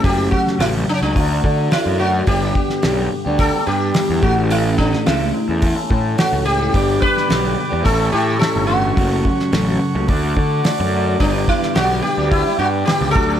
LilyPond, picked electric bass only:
\new Staff \with { instrumentName = "Picked electric bass" } { \clef bass \time 4/4 \key g \lydian \tempo 4 = 108 fis,,8 r8 a,,8 r16 cis,16 d,8 d8 r16 fis,8. | g,,8 r8 b,,8 r16 d,8 r16 g,8 r16 e,16 a,,8~ | a,,4 cis,8 r16 e,8 r16 a,8 r16 cis,8. | g,,8 r8 b,,8 r16 e,16 a,,8 a,8 r16 g,,8. |
fis,,8 r8 a,,8 r16 cis,16 d,8 d8 r16 fis,8. | g,,8 r8 b,,8 r16 d,8 r16 g,8 r16 cis,16 d,8 | }